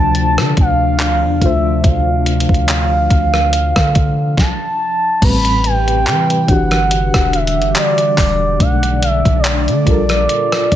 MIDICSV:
0, 0, Header, 1, 6, 480
1, 0, Start_track
1, 0, Tempo, 845070
1, 1045, Time_signature, 4, 2, 24, 8
1, 6110, End_track
2, 0, Start_track
2, 0, Title_t, "Soft synth lead"
2, 0, Program_c, 0, 80
2, 0, Note_on_c, 0, 81, 112
2, 309, Note_off_c, 0, 81, 0
2, 341, Note_on_c, 0, 77, 104
2, 819, Note_on_c, 0, 76, 97
2, 828, Note_off_c, 0, 77, 0
2, 1059, Note_on_c, 0, 77, 101
2, 1068, Note_off_c, 0, 76, 0
2, 2487, Note_off_c, 0, 77, 0
2, 2491, Note_on_c, 0, 81, 110
2, 2972, Note_on_c, 0, 83, 118
2, 2981, Note_off_c, 0, 81, 0
2, 3213, Note_on_c, 0, 79, 121
2, 3221, Note_off_c, 0, 83, 0
2, 3690, Note_on_c, 0, 78, 113
2, 3698, Note_off_c, 0, 79, 0
2, 4172, Note_on_c, 0, 76, 102
2, 4181, Note_off_c, 0, 78, 0
2, 4408, Note_off_c, 0, 76, 0
2, 4411, Note_on_c, 0, 74, 105
2, 4891, Note_on_c, 0, 78, 114
2, 4900, Note_off_c, 0, 74, 0
2, 5133, Note_on_c, 0, 76, 98
2, 5142, Note_off_c, 0, 78, 0
2, 5332, Note_off_c, 0, 76, 0
2, 5336, Note_on_c, 0, 73, 73
2, 5372, Note_on_c, 0, 74, 110
2, 5380, Note_off_c, 0, 73, 0
2, 6110, Note_off_c, 0, 74, 0
2, 6110, End_track
3, 0, Start_track
3, 0, Title_t, "FM electric piano"
3, 0, Program_c, 1, 5
3, 0, Control_c, 1, 64, 127
3, 0, Note_on_c, 1, 50, 80
3, 0, Note_on_c, 1, 57, 74
3, 0, Note_on_c, 1, 65, 72
3, 0, Note_on_c, 1, 72, 86
3, 776, Note_off_c, 1, 50, 0
3, 782, Note_off_c, 1, 57, 0
3, 788, Note_off_c, 1, 65, 0
3, 794, Note_on_c, 1, 50, 65
3, 804, Note_on_c, 1, 57, 58
3, 811, Note_off_c, 1, 72, 0
3, 816, Note_on_c, 1, 65, 61
3, 826, Note_on_c, 1, 72, 69
3, 2456, Note_off_c, 1, 50, 0
3, 2461, Note_off_c, 1, 57, 0
3, 2467, Note_off_c, 1, 65, 0
3, 2473, Note_off_c, 1, 72, 0
3, 2491, Control_c, 1, 64, 0
3, 2962, Note_on_c, 1, 45, 69
3, 2968, Note_on_c, 1, 55, 64
3, 2973, Note_on_c, 1, 59, 50
3, 2978, Note_on_c, 1, 71, 75
3, 3009, Note_off_c, 1, 59, 0
3, 3009, Note_on_c, 1, 60, 61
3, 3062, Control_c, 1, 64, 127
3, 3675, Note_on_c, 1, 52, 68
3, 3683, Note_off_c, 1, 45, 0
3, 3685, Note_on_c, 1, 62, 65
3, 3686, Note_off_c, 1, 55, 0
3, 3691, Note_off_c, 1, 71, 0
3, 3693, Control_c, 1, 64, 0
3, 3696, Note_on_c, 1, 66, 65
3, 3707, Note_off_c, 1, 60, 0
3, 3707, Note_on_c, 1, 67, 74
3, 3781, Control_c, 1, 64, 127
3, 4857, Note_off_c, 1, 52, 0
3, 4862, Note_off_c, 1, 62, 0
3, 4868, Note_off_c, 1, 66, 0
3, 4873, Note_off_c, 1, 67, 0
3, 4881, Note_on_c, 1, 47, 67
3, 4887, Note_on_c, 1, 57, 62
3, 4891, Note_on_c, 1, 62, 63
3, 4892, Control_c, 1, 64, 0
3, 4898, Note_on_c, 1, 74, 78
3, 4980, Control_c, 1, 64, 127
3, 5594, Note_on_c, 1, 55, 71
3, 5603, Note_off_c, 1, 47, 0
3, 5605, Note_off_c, 1, 57, 0
3, 5606, Note_on_c, 1, 65, 65
3, 5608, Note_off_c, 1, 62, 0
3, 5611, Note_off_c, 1, 74, 0
3, 5613, Control_c, 1, 64, 0
3, 5616, Note_on_c, 1, 69, 63
3, 5627, Note_on_c, 1, 70, 78
3, 5723, Control_c, 1, 64, 127
3, 6110, Note_off_c, 1, 55, 0
3, 6110, Note_off_c, 1, 65, 0
3, 6110, Note_off_c, 1, 69, 0
3, 6110, Note_off_c, 1, 70, 0
3, 6110, End_track
4, 0, Start_track
4, 0, Title_t, "Ambient pad"
4, 0, Program_c, 2, 92
4, 0, Note_on_c, 2, 48, 73
4, 0, Note_on_c, 2, 53, 70
4, 0, Note_on_c, 2, 62, 88
4, 2463, Note_off_c, 2, 53, 0
4, 2463, Note_off_c, 2, 62, 0
4, 2464, Note_off_c, 2, 48, 0
4, 2965, Note_on_c, 2, 48, 77
4, 2966, Note_on_c, 2, 71, 72
4, 2967, Note_on_c, 2, 67, 87
4, 3677, Note_off_c, 2, 48, 0
4, 3678, Note_off_c, 2, 67, 0
4, 3678, Note_off_c, 2, 71, 0
4, 3683, Note_on_c, 2, 50, 87
4, 3683, Note_on_c, 2, 55, 73
4, 3683, Note_on_c, 2, 78, 90
4, 4872, Note_off_c, 2, 50, 0
4, 4872, Note_off_c, 2, 55, 0
4, 4872, Note_off_c, 2, 78, 0
4, 4880, Note_on_c, 2, 50, 77
4, 4881, Note_on_c, 2, 62, 86
4, 5595, Note_off_c, 2, 50, 0
4, 5596, Note_off_c, 2, 62, 0
4, 5601, Note_on_c, 2, 46, 83
4, 5602, Note_on_c, 2, 65, 94
4, 6110, Note_off_c, 2, 46, 0
4, 6110, Note_off_c, 2, 65, 0
4, 6110, End_track
5, 0, Start_track
5, 0, Title_t, "808-style bass"
5, 0, Program_c, 3, 38
5, 0, Note_on_c, 3, 38, 100
5, 217, Note_on_c, 3, 50, 101
5, 225, Note_off_c, 3, 38, 0
5, 320, Note_off_c, 3, 50, 0
5, 327, Note_on_c, 3, 38, 107
5, 696, Note_on_c, 3, 40, 95
5, 704, Note_off_c, 3, 38, 0
5, 800, Note_off_c, 3, 40, 0
5, 804, Note_on_c, 3, 38, 102
5, 1034, Note_off_c, 3, 38, 0
5, 1045, Note_on_c, 3, 38, 114
5, 1400, Note_off_c, 3, 38, 0
5, 1416, Note_on_c, 3, 38, 102
5, 1751, Note_off_c, 3, 38, 0
5, 1765, Note_on_c, 3, 38, 108
5, 2119, Note_off_c, 3, 38, 0
5, 2138, Note_on_c, 3, 50, 98
5, 2472, Note_off_c, 3, 50, 0
5, 2965, Note_on_c, 3, 33, 107
5, 3445, Note_on_c, 3, 52, 101
5, 3454, Note_off_c, 3, 33, 0
5, 3673, Note_off_c, 3, 52, 0
5, 3684, Note_on_c, 3, 31, 108
5, 4039, Note_off_c, 3, 31, 0
5, 4058, Note_on_c, 3, 28, 102
5, 4296, Note_on_c, 3, 31, 88
5, 4305, Note_off_c, 3, 28, 0
5, 4400, Note_off_c, 3, 31, 0
5, 4646, Note_on_c, 3, 28, 106
5, 4875, Note_off_c, 3, 28, 0
5, 4886, Note_on_c, 3, 35, 110
5, 5240, Note_off_c, 3, 35, 0
5, 5258, Note_on_c, 3, 35, 109
5, 5496, Note_on_c, 3, 50, 100
5, 5505, Note_off_c, 3, 35, 0
5, 5600, Note_off_c, 3, 50, 0
5, 5605, Note_on_c, 3, 34, 98
5, 5835, Note_off_c, 3, 34, 0
5, 6088, Note_on_c, 3, 38, 107
5, 6110, Note_off_c, 3, 38, 0
5, 6110, End_track
6, 0, Start_track
6, 0, Title_t, "Drums"
6, 84, Note_on_c, 9, 42, 68
6, 141, Note_off_c, 9, 42, 0
6, 216, Note_on_c, 9, 37, 98
6, 273, Note_off_c, 9, 37, 0
6, 324, Note_on_c, 9, 42, 62
6, 326, Note_on_c, 9, 36, 97
6, 380, Note_off_c, 9, 42, 0
6, 383, Note_off_c, 9, 36, 0
6, 566, Note_on_c, 9, 39, 112
6, 566, Note_on_c, 9, 42, 71
6, 622, Note_off_c, 9, 39, 0
6, 623, Note_off_c, 9, 42, 0
6, 804, Note_on_c, 9, 36, 82
6, 805, Note_on_c, 9, 42, 67
6, 861, Note_off_c, 9, 36, 0
6, 861, Note_off_c, 9, 42, 0
6, 1044, Note_on_c, 9, 36, 119
6, 1046, Note_on_c, 9, 42, 67
6, 1101, Note_off_c, 9, 36, 0
6, 1102, Note_off_c, 9, 42, 0
6, 1285, Note_on_c, 9, 42, 74
6, 1342, Note_off_c, 9, 42, 0
6, 1365, Note_on_c, 9, 42, 58
6, 1416, Note_on_c, 9, 36, 88
6, 1422, Note_off_c, 9, 42, 0
6, 1445, Note_on_c, 9, 42, 43
6, 1472, Note_off_c, 9, 36, 0
6, 1502, Note_off_c, 9, 42, 0
6, 1523, Note_on_c, 9, 42, 75
6, 1526, Note_on_c, 9, 39, 103
6, 1580, Note_off_c, 9, 42, 0
6, 1583, Note_off_c, 9, 39, 0
6, 1763, Note_on_c, 9, 36, 80
6, 1764, Note_on_c, 9, 42, 73
6, 1820, Note_off_c, 9, 36, 0
6, 1820, Note_off_c, 9, 42, 0
6, 1895, Note_on_c, 9, 37, 71
6, 1952, Note_off_c, 9, 37, 0
6, 2004, Note_on_c, 9, 42, 67
6, 2061, Note_off_c, 9, 42, 0
6, 2136, Note_on_c, 9, 36, 87
6, 2136, Note_on_c, 9, 37, 98
6, 2193, Note_off_c, 9, 36, 0
6, 2193, Note_off_c, 9, 37, 0
6, 2245, Note_on_c, 9, 42, 62
6, 2247, Note_on_c, 9, 36, 98
6, 2301, Note_off_c, 9, 42, 0
6, 2304, Note_off_c, 9, 36, 0
6, 2485, Note_on_c, 9, 36, 108
6, 2487, Note_on_c, 9, 38, 86
6, 2542, Note_off_c, 9, 36, 0
6, 2544, Note_off_c, 9, 38, 0
6, 2965, Note_on_c, 9, 36, 112
6, 2966, Note_on_c, 9, 42, 69
6, 2966, Note_on_c, 9, 49, 102
6, 3022, Note_off_c, 9, 36, 0
6, 3023, Note_off_c, 9, 42, 0
6, 3023, Note_off_c, 9, 49, 0
6, 3094, Note_on_c, 9, 42, 53
6, 3151, Note_off_c, 9, 42, 0
6, 3205, Note_on_c, 9, 42, 78
6, 3261, Note_off_c, 9, 42, 0
6, 3338, Note_on_c, 9, 42, 47
6, 3395, Note_off_c, 9, 42, 0
6, 3444, Note_on_c, 9, 42, 80
6, 3447, Note_on_c, 9, 39, 97
6, 3501, Note_off_c, 9, 42, 0
6, 3504, Note_off_c, 9, 39, 0
6, 3579, Note_on_c, 9, 42, 46
6, 3636, Note_off_c, 9, 42, 0
6, 3683, Note_on_c, 9, 36, 86
6, 3683, Note_on_c, 9, 42, 68
6, 3740, Note_off_c, 9, 36, 0
6, 3740, Note_off_c, 9, 42, 0
6, 3812, Note_on_c, 9, 42, 51
6, 3815, Note_on_c, 9, 37, 69
6, 3869, Note_off_c, 9, 42, 0
6, 3871, Note_off_c, 9, 37, 0
6, 3925, Note_on_c, 9, 42, 73
6, 3982, Note_off_c, 9, 42, 0
6, 4056, Note_on_c, 9, 36, 89
6, 4056, Note_on_c, 9, 37, 99
6, 4057, Note_on_c, 9, 42, 55
6, 4113, Note_off_c, 9, 36, 0
6, 4113, Note_off_c, 9, 37, 0
6, 4114, Note_off_c, 9, 42, 0
6, 4165, Note_on_c, 9, 42, 57
6, 4222, Note_off_c, 9, 42, 0
6, 4245, Note_on_c, 9, 42, 46
6, 4302, Note_off_c, 9, 42, 0
6, 4326, Note_on_c, 9, 42, 36
6, 4383, Note_off_c, 9, 42, 0
6, 4406, Note_on_c, 9, 39, 118
6, 4406, Note_on_c, 9, 42, 72
6, 4462, Note_off_c, 9, 39, 0
6, 4463, Note_off_c, 9, 42, 0
6, 4532, Note_on_c, 9, 42, 54
6, 4589, Note_off_c, 9, 42, 0
6, 4644, Note_on_c, 9, 36, 86
6, 4646, Note_on_c, 9, 46, 69
6, 4647, Note_on_c, 9, 39, 66
6, 4701, Note_off_c, 9, 36, 0
6, 4702, Note_off_c, 9, 46, 0
6, 4703, Note_off_c, 9, 39, 0
6, 4885, Note_on_c, 9, 36, 114
6, 4886, Note_on_c, 9, 42, 70
6, 4942, Note_off_c, 9, 36, 0
6, 4943, Note_off_c, 9, 42, 0
6, 5015, Note_on_c, 9, 42, 55
6, 5072, Note_off_c, 9, 42, 0
6, 5126, Note_on_c, 9, 42, 82
6, 5183, Note_off_c, 9, 42, 0
6, 5256, Note_on_c, 9, 36, 93
6, 5257, Note_on_c, 9, 42, 49
6, 5313, Note_off_c, 9, 36, 0
6, 5314, Note_off_c, 9, 42, 0
6, 5363, Note_on_c, 9, 42, 77
6, 5366, Note_on_c, 9, 39, 106
6, 5420, Note_off_c, 9, 42, 0
6, 5423, Note_off_c, 9, 39, 0
6, 5498, Note_on_c, 9, 42, 51
6, 5555, Note_off_c, 9, 42, 0
6, 5604, Note_on_c, 9, 36, 86
6, 5604, Note_on_c, 9, 42, 66
6, 5661, Note_off_c, 9, 36, 0
6, 5661, Note_off_c, 9, 42, 0
6, 5732, Note_on_c, 9, 42, 48
6, 5735, Note_on_c, 9, 37, 73
6, 5789, Note_off_c, 9, 42, 0
6, 5792, Note_off_c, 9, 37, 0
6, 5846, Note_on_c, 9, 42, 72
6, 5903, Note_off_c, 9, 42, 0
6, 5978, Note_on_c, 9, 37, 105
6, 5979, Note_on_c, 9, 42, 55
6, 6034, Note_off_c, 9, 37, 0
6, 6036, Note_off_c, 9, 42, 0
6, 6087, Note_on_c, 9, 42, 61
6, 6088, Note_on_c, 9, 36, 97
6, 6110, Note_off_c, 9, 36, 0
6, 6110, Note_off_c, 9, 42, 0
6, 6110, End_track
0, 0, End_of_file